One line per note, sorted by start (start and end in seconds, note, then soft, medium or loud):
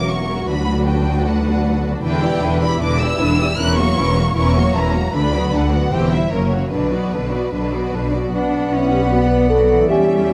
0.00 0.48 E1 soft
0.00 0.48 E2 soft
0.00 0.50 E3 soft
0.00 1.99 F#3 soft
0.00 0.50 A#3 soft
0.00 0.28 C#4 soft
0.00 0.44 C#4 soft
0.00 0.50 E4 soft
0.00 2.00 F#4 soft
0.00 0.44 A#4 soft
0.00 0.50 C#5 soft
0.09 0.50 A#4 soft
0.09 0.48 C#6 medium
0.29 0.50 C#4 soft
0.48 2.01 D2 soft
0.48 1.25 D3 soft
0.48 2.00 D4 soft
0.48 2.00 B4 soft
0.48 0.87 B5 medium
0.68 1.05 D4 soft
0.87 1.64 B4 soft
0.87 1.25 G5 medium
1.07 1.83 D4 soft
1.26 2.05 D3 soft
1.26 1.85 F#5 medium
1.46 2.80 B3 soft
1.66 2.41 B4 soft
1.85 2.22 D4 soft
2.03 2.38 E1 medium
2.03 2.38 E2 medium
2.03 2.22 D3 soft
2.03 3.58 E3 medium
2.03 2.22 D4 soft
2.03 2.21 E4 soft
2.03 2.22 B4 soft
2.03 2.58 G5 medium
2.22 2.43 E3 soft
2.22 2.61 D4 soft
2.22 2.42 E4 soft
2.22 2.42 G4 soft
2.22 2.43 D5 soft
2.42 2.77 E1 medium
2.42 2.77 E2 medium
2.42 2.62 D3 soft
2.42 2.62 D4 soft
2.42 2.62 E4 soft
2.42 3.19 B4 soft
2.42 2.62 B4 soft
2.62 2.82 E3 soft
2.62 3.00 D4 soft
2.62 2.82 E4 soft
2.62 2.81 G4 soft
2.62 2.81 D5 soft
2.62 2.82 B5 medium
2.80 3.16 E1 medium
2.80 3.15 E2 medium
2.80 3.00 D3 soft
2.80 3.61 B3 soft
2.80 3.00 D4 soft
2.80 2.99 E4 medium
2.80 2.99 B4 soft
2.80 3.01 D6 medium
3.01 3.21 E3 soft
3.01 3.38 D4 soft
3.01 3.21 E4 soft
3.01 3.20 G4 soft
3.01 3.20 D5 soft
3.01 3.59 E6 medium
3.19 3.55 E1 medium
3.19 3.54 E2 soft
3.19 3.40 D3 soft
3.19 3.40 D4 soft
3.19 3.39 E4 soft
3.19 3.39 B4 soft
3.19 3.61 B4 soft
3.39 3.59 E3 soft
3.39 3.60 D4 soft
3.39 3.60 E4 soft
3.39 3.59 G4 soft
3.39 3.59 D5 soft
3.57 3.94 E1 medium
3.57 3.93 E2 medium
3.57 4.36 E3 medium
3.57 3.78 E3 soft
3.57 3.78 C#4 medium
3.57 3.76 E4 soft
3.57 3.76 A#4 soft
3.57 3.78 F#6 medium
3.77 3.98 F#3 soft
3.77 3.99 A#3 soft
3.77 4.16 C#4 soft
3.77 3.98 F#4 soft
3.77 3.98 C#5 soft
3.77 4.35 C#6 medium
3.97 4.33 E1 medium
3.97 4.32 E2 medium
3.97 4.18 E3 soft
3.97 4.18 C#4 soft
3.97 4.17 E4 soft
3.97 4.17 A#4 soft
3.97 4.75 A#4 soft
4.17 4.37 F#3 soft
4.17 4.37 A#3 soft
4.17 4.94 C#4 soft
4.17 4.37 F#4 soft
4.17 4.37 C#5 soft
4.36 4.71 E1 medium
4.36 4.71 E2 medium
4.36 5.17 E3 soft
4.36 4.55 E3 soft
4.36 4.55 C#4 soft
4.36 4.55 E4 soft
4.36 4.55 A#4 soft
4.36 4.75 C#6 medium
4.56 4.76 F#3 soft
4.56 5.17 A#3 soft
4.56 4.76 A#3 soft
4.56 4.76 F#4 soft
4.56 4.76 C#5 soft
4.75 5.10 E1 medium
4.75 5.10 E2 medium
4.75 4.95 E3 soft
4.75 4.95 C#4 soft
4.75 4.95 E4 soft
4.75 4.95 A#4 soft
4.75 5.17 A#4 soft
4.75 5.15 A#5 medium
4.93 5.14 F#3 soft
4.93 5.15 A#3 soft
4.93 5.17 C#4 soft
4.93 5.14 F#4 soft
4.93 5.14 C#5 soft
5.13 5.49 D2 medium
5.13 5.49 D2 soft
5.13 5.94 D3 soft
5.13 5.33 D3 soft
5.13 5.32 D4 soft
5.13 5.33 D4 soft
5.13 5.32 B4 soft
5.13 5.54 B5 medium
5.32 5.54 F#3 soft
5.32 5.54 B3 soft
5.32 5.72 D4 soft
5.32 5.53 F#4 soft
5.32 5.53 D5 soft
5.52 5.88 D2 soft
5.52 5.89 D2 medium
5.52 5.74 D3 soft
5.52 5.72 D4 soft
5.52 5.74 D4 soft
5.52 5.73 B4 soft
5.52 5.95 B4 soft
5.52 5.94 F#5 medium
5.71 5.93 F#3 soft
5.71 5.93 B3 soft
5.71 5.95 D4 soft
5.71 5.92 F#4 soft
5.71 5.92 D5 soft
5.91 6.29 E1 medium
5.91 6.28 E2 soft
5.91 6.34 E3 soft
5.91 6.12 E3 soft
5.91 6.12 C4 soft
5.91 6.10 G4 soft
5.91 6.10 C5 soft
5.91 6.13 G5 medium
6.11 6.33 G3 soft
6.11 6.32 E4 soft
6.11 6.33 E4 soft
6.11 6.35 G4 soft
6.11 6.35 C5 soft
6.11 6.32 E5 soft
6.11 6.33 E5 medium
6.31 6.68 F#1 soft
6.31 6.68 F#2 soft
6.31 6.75 F#2 soft
6.31 6.52 A#3 soft
6.31 6.52 C#4 soft
6.31 6.51 A#4 soft
6.31 6.72 C#5 soft
6.51 6.73 F#3 soft
6.51 6.73 A#3 soft
6.51 6.72 F#4 soft
6.51 8.22 F#4 soft
6.51 6.75 A#4 soft
6.51 6.72 C#5 soft
6.71 7.09 B1 soft
6.71 7.08 B2 soft
6.71 8.14 B2 soft
6.71 6.92 D3 soft
6.71 6.91 D4 soft
6.71 6.92 D4 soft
6.71 6.91 B4 soft
6.71 8.11 B4 soft
6.91 7.13 F#3 soft
6.91 7.13 B3 soft
6.91 7.32 D4 soft
6.91 7.12 F#4 soft
6.91 7.13 D5 soft
7.13 7.49 B1 soft
7.13 7.48 B2 soft
7.13 7.33 D3 soft
7.13 7.33 D4 soft
7.13 7.33 B4 soft
7.13 7.92 B4 soft
7.32 7.54 F#3 soft
7.32 7.54 B3 soft
7.32 7.71 D4 soft
7.32 7.52 F#4 soft
7.32 7.52 D5 soft
7.52 7.88 B1 soft
7.52 7.88 B2 soft
7.52 7.72 D3 soft
7.52 9.92 F#3 soft
7.52 7.71 D4 soft
7.52 7.72 D4 soft
7.52 7.72 B4 soft
7.72 7.94 F#3 soft
7.72 7.93 B3 soft
7.72 8.12 D4 soft
7.72 7.92 F#4 soft
7.72 7.93 D5 soft
7.93 8.29 B1 soft
7.93 8.29 B2 soft
7.93 8.14 D3 soft
7.93 8.13 D4 soft
7.93 8.14 D4 soft
7.93 8.27 B4 soft
7.93 8.13 B4 soft
8.12 9.83 B2 soft
8.12 8.33 F#3 soft
8.12 8.32 B3 soft
8.12 8.18 D4 soft
8.12 8.33 F#4 soft
8.12 8.33 D5 soft
8.20 9.85 D4 soft
8.24 9.88 F#4 soft
8.28 9.90 B4 soft
8.32 9.87 B1 soft
8.32 9.86 B3 soft
8.32 9.87 B3 soft
8.32 8.70 D4 medium
8.32 10.33 D5 soft
8.32 9.92 F#5 soft
8.32 9.87 F#5 soft
8.32 9.86 B5 soft
8.72 9.12 C#4 soft
8.72 8.92 E4 medium
8.92 9.01 G4 medium
9.12 9.51 B3 soft
9.12 9.21 F#4 medium
9.31 9.50 B4 medium
9.50 9.90 F#3 soft
9.50 9.89 A4 medium
9.73 10.33 E3 soft
9.77 10.33 C#4 soft
9.82 10.33 E4 soft
9.87 10.33 C#4 soft
9.87 10.28 G4 medium
9.87 10.33 C#5 soft
9.87 10.33 E5 soft
9.87 10.33 G5 soft
9.91 10.33 E2 soft
9.91 10.33 G3 medium
9.91 10.33 C#4 soft
9.91 10.33 E5 soft
10.29 10.33 F#4 medium